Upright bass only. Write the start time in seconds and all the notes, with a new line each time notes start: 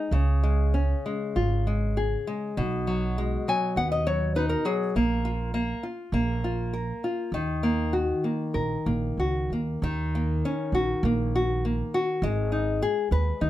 0.11 C#2
1.36 G#1
2.57 B1
3.76 D#2
4.96 A#1
6.12 A#1
7.32 D#2
8.55 A#1
8.86 A#1
9.17 C#2
9.50 D#2
9.82 D#2
10.72 A#1
11.03 A#1
12.22 G#1
13.11 D#2
13.41 D#2